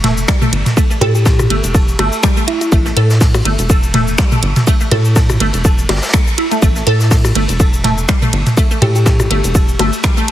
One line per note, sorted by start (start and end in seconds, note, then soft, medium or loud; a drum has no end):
0.00 0.25 E1 medium
0.00 0.13 A3 loud
0.00 snare soft
0.00 closed hi-hat medium
0.00 mid tom medium
0.00 ride medium
0.18 cabasa soft
0.28 0.37 G3 loud
0.28 finger snap loud
0.28 kick loud
0.28 snare loud
0.28 ride medium
0.28 cabasa medium
0.42 0.49 A3 loud
0.42 mid tom loud
0.42 cabasa soft
0.53 0.63 G1 loud
0.53 closed hi-hat medium
0.53 ride medium
0.66 snare soft
0.66 closed hi-hat soft
0.66 mid tom medium
0.66 cabasa soft
0.77 0.86 A3 loud
0.77 kick loud
0.77 ride medium
0.77 cabasa medium
0.90 0.98 A3 medium
0.90 cabasa soft
1.01 1.47 A2 medium
1.01 1.10 G4 medium
1.01 1.11 A4 loud
1.01 closed hi-hat medium
1.01 mid tom medium
1.01 ride medium
1.01 percussion blips medium
1.15 1.22 G4 medium
1.15 ride soft
1.15 cabasa soft
1.25 1.29 A4 medium
1.25 kick loud
1.25 snare loud
1.25 ride loud
1.25 cabasa medium
1.39 mid tom medium
1.39 ride soft
1.39 percussion blips medium
1.39 cabasa soft
1.50 1.61 G1 medium
1.50 1.56 A3 loud
1.50 closed hi-hat medium
1.50 ride medium
1.64 1.95 E1 medium
1.64 closed hi-hat soft
1.64 ride soft
1.64 cabasa soft
1.75 1.81 A4 medium
1.75 kick loud
1.75 ride medium
1.75 cabasa medium
1.88 cabasa soft
1.99 2.10 G1 loud
1.99 2.08 A3 loud
1.99 closed hi-hat loud
1.99 ride medium
1.99 percussion blips medium
2.12 ride soft
2.12 cabasa soft
2.23 2.33 G3 loud
2.23 finger snap loud
2.23 kick loud
2.23 snare loud
2.23 cabasa medium
2.37 2.44 A3 loud
2.37 cabasa soft
2.47 2.56 E4 medium
2.47 closed hi-hat loud
2.47 ride medium
2.61 2.68 E4 medium
2.61 closed hi-hat soft
2.61 cabasa soft
2.72 2.92 A1 loud
2.72 2.81 A3 loud
2.72 kick loud
2.72 ride medium
2.72 cabasa medium
2.86 2.93 A3 medium
2.86 snare soft
2.86 cabasa soft
2.97 3.42 A2 medium
2.97 3.06 A4 loud
2.97 closed hi-hat loud
2.97 ride medium
3.10 snare soft
3.10 cabasa soft
3.21 3.25 A4 medium
3.21 kick loud
3.21 snare loud
3.21 open hi-hat medium
3.21 cabasa medium
3.34 ride soft
3.34 percussion blips medium
3.34 cabasa soft
3.45 3.56 G1 medium
3.45 3.51 A3 loud
3.45 closed hi-hat medium
3.45 ride medium
3.59 4.15 E1 medium
3.59 closed hi-hat soft
3.59 cabasa soft
3.70 3.76 A4 medium
3.70 kick loud
3.70 ride medium
3.70 cabasa medium
3.83 cabasa soft
3.94 4.03 A3 loud
3.94 snare soft
3.94 closed hi-hat loud
3.94 mid tom medium
3.94 ride medium
4.07 cabasa soft
4.18 4.28 G3 loud
4.18 finger snap loud
4.18 kick loud
4.18 snare loud
4.18 ride medium
4.18 cabasa medium
4.32 4.39 A3 loud
4.32 mid tom medium
4.32 cabasa soft
4.43 4.54 G1 medium
4.43 closed hi-hat loud
4.43 ride medium
4.56 snare soft
4.56 closed hi-hat soft
4.56 mid tom medium
4.56 cabasa soft
4.66 4.77 A3 loud
4.66 kick loud
4.66 ride medium
4.66 cabasa medium
4.81 4.88 A3 medium
4.81 cabasa soft
4.91 5.37 A2 medium
4.91 5.01 A4 loud
4.91 closed hi-hat loud
4.91 mid tom medium
4.91 ride medium
4.91 percussion blips medium
5.05 ride soft
5.05 cabasa soft
5.16 5.20 A4 medium
5.16 kick loud
5.16 snare loud
5.16 ride loud
5.16 cabasa medium
5.30 mid tom medium
5.30 ride soft
5.30 percussion blips medium
5.30 cabasa soft
5.40 5.51 G1 medium
5.40 5.47 A3 loud
5.40 closed hi-hat medium
5.40 ride medium
5.54 5.86 E1 medium
5.54 closed hi-hat soft
5.54 ride soft
5.54 cabasa soft
5.65 5.71 A4 medium
5.65 kick loud
5.65 ride medium
5.65 cabasa medium
5.78 cabasa soft
5.89 6.00 G1 loud
5.89 5.95 G3 medium
5.89 snare medium
5.89 closed hi-hat loud
5.89 open hi-hat medium
5.89 percussion blips medium
5.96 snare medium
5.96 open hi-hat medium
6.02 snare medium
6.02 open hi-hat medium
6.02 cabasa soft
6.08 snare loud
6.08 open hi-hat medium
6.13 6.17 A3 medium
6.13 finger snap loud
6.13 kick loud
6.13 ride medium
6.13 cabasa medium
6.27 cabasa soft
6.37 6.44 E4 medium
6.37 closed hi-hat loud
6.37 ride medium
6.51 6.56 A3 medium
6.51 closed hi-hat soft
6.51 cabasa soft
6.62 6.82 A1 loud
6.62 6.72 A3 loud
6.62 kick loud
6.62 ride medium
6.62 cabasa medium
6.76 6.83 A3 medium
6.76 snare soft
6.76 cabasa soft
6.87 7.32 A2 medium
6.87 6.96 A4 loud
6.87 closed hi-hat medium
6.87 ride medium
7.00 snare soft
7.00 cabasa soft
7.11 7.15 A4 medium
7.11 kick loud
7.11 snare loud
7.11 open hi-hat medium
7.11 cabasa medium
7.25 ride soft
7.25 percussion blips medium
7.25 cabasa soft
7.35 7.46 G1 medium
7.35 7.42 A3 loud
7.35 closed hi-hat medium
7.35 ride medium
7.49 8.05 E1 medium
7.49 closed hi-hat soft
7.49 cabasa soft
7.60 7.66 A4 medium
7.60 kick loud
7.60 ride medium
7.60 cabasa medium
7.74 cabasa soft
7.83 7.94 A3 loud
7.83 snare soft
7.83 closed hi-hat loud
7.83 mid tom medium
7.83 ride medium
7.98 cabasa soft
8.08 8.18 G3 loud
8.08 finger snap loud
8.08 kick loud
8.08 snare loud
8.08 ride medium
8.08 cabasa medium
8.22 8.30 A3 loud
8.22 mid tom medium
8.22 cabasa soft
8.33 8.44 G1 loud
8.33 closed hi-hat medium
8.33 ride medium
8.46 snare soft
8.46 closed hi-hat soft
8.46 mid tom medium
8.46 cabasa soft
8.57 8.67 A3 loud
8.57 kick loud
8.57 ride medium
8.57 cabasa medium
8.71 8.78 A3 medium
8.71 cabasa soft
8.81 9.27 A2 medium
8.81 8.91 G4 medium
8.81 8.91 A4 loud
8.81 closed hi-hat medium
8.81 mid tom medium
8.81 ride medium
8.81 percussion blips soft
8.95 9.02 G4 medium
8.95 ride soft
8.95 cabasa soft
9.06 9.10 A4 medium
9.06 kick loud
9.06 snare loud
9.06 ride loud
9.06 cabasa medium
9.19 mid tom medium
9.19 ride soft
9.19 percussion blips medium
9.19 cabasa soft
9.30 9.41 G1 medium
9.30 9.37 A3 loud
9.30 closed hi-hat medium
9.30 ride medium
9.44 9.76 E1 medium
9.44 closed hi-hat soft
9.44 ride soft
9.44 cabasa soft
9.55 9.61 A4 medium
9.55 kick loud
9.55 ride medium
9.55 cabasa medium
9.69 cabasa soft
9.79 9.90 G1 loud
9.79 9.89 A3 loud
9.79 closed hi-hat medium
9.79 ride medium
9.79 percussion blips medium
9.92 ride soft
9.92 cabasa soft
10.04 10.13 G3 loud
10.04 finger snap loud
10.04 kick loud
10.04 snare loud
10.04 ride medium
10.04 cabasa medium
10.17 10.25 A3 loud
10.17 cabasa soft
10.28 closed hi-hat loud